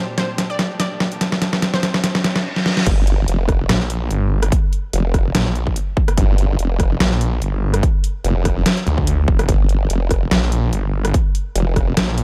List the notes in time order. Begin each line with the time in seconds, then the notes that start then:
Already playing: A#2 G3 D4 G4 C5, riser
0.18 C5, snare, closed hi-hat
0.38 snare, closed hi-hat
0.50 D5
0.59 snare, closed hi-hat
0.80 D5, snare, closed hi-hat
1.00 snare
1.12 closed hi-hat
1.21 snare, closed hi-hat
1.32 snare
1.42 snare, closed hi-hat
1.53 snare
1.62 snare, closed hi-hat
1.74 C5, snare
1.83 snare, closed hi-hat
1.94 snare
2.04 snare, closed hi-hat, reverse cymbal
2.15 snare
2.24 snare, closed hi-hat
2.36 snare
2.56 snare
2.66 snare
2.77 snare
2.86 G1, kick, closed hi-hat, crash
3.07 closed hi-hat
3.28 F1, closed hi-hat
3.49 kick, cross-stick, closed hi-hat
3.69 A#1, cross-stick, snare, closed hi-hat
3.90 closed hi-hat
4.11 G1, closed hi-hat
4.43 cross-stick, closed hi-hat
4.52 kick, closed hi-hat
4.73 closed hi-hat
4.93 F1, closed hi-hat
5.14 kick, cross-stick, closed hi-hat
5.35 A#1, cross-stick, snare, closed hi-hat
5.55 closed hi-hat
5.67 kick
5.76 closed hi-hat
5.97 kick
6.08 cross-stick, closed hi-hat
6.18 G1, kick, closed hi-hat
6.38 closed hi-hat
6.59 F1, closed hi-hat
6.80 kick, cross-stick, closed hi-hat
7.00 A#1, cross-stick, snare, closed hi-hat
7.21 closed hi-hat
7.42 G1, closed hi-hat
7.74 cross-stick, closed hi-hat
7.83 kick, closed hi-hat
8.04 closed hi-hat
8.24 F1, closed hi-hat
8.45 kick, cross-stick, closed hi-hat
8.66 cross-stick, snare, closed hi-hat
8.77 closed hi-hat
8.87 D2, closed hi-hat
8.98 kick
9.07 closed hi-hat
9.28 F1, kick
9.39 cross-stick, closed hi-hat
9.49 G1, kick, closed hi-hat
9.69 closed hi-hat
9.90 F1, closed hi-hat
10.11 kick, cross-stick, closed hi-hat
10.31 A#1, cross-stick, snare, closed hi-hat
10.52 closed hi-hat
10.73 G1, closed hi-hat
11.05 cross-stick, closed hi-hat
11.14 kick, closed hi-hat
11.35 closed hi-hat
11.56 F1, closed hi-hat
11.76 kick, cross-stick, closed hi-hat
11.97 A#1, cross-stick, snare, closed hi-hat
12.18 closed hi-hat